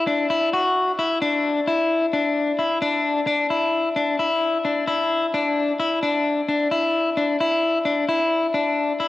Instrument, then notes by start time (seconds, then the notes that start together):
clean electric guitar
0.07 D4
0.30 E4
0.53 F#4
0.99 E4
1.22 D4
1.67 E4
2.13 D4
2.59 E4
2.82 D4
3.27 D4
3.50 E4
3.96 D4
4.19 E4
4.65 D4
4.87 E4
5.34 D4
5.79 E4
6.03 D4
6.48 D4
6.71 E4
7.17 D4
7.40 E4
7.85 D4
8.09 E4
8.54 D4
9.00 E4